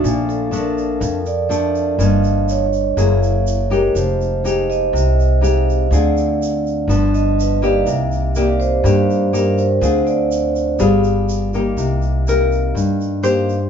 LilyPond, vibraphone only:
\new Staff \with { instrumentName = "Vibraphone" } { \time 4/4 \key c \minor \tempo 4 = 123 r8 a'8 bes'4. d''4. | ees''4 des''4. r4 ais'8 | c''4. ees''4. f''4 | d''4. r4 ees''8 b'8 d''8 |
r4 d''8 c''4. bes'8 c''8~ | c''8 d''4 r2 r8 | r1 | }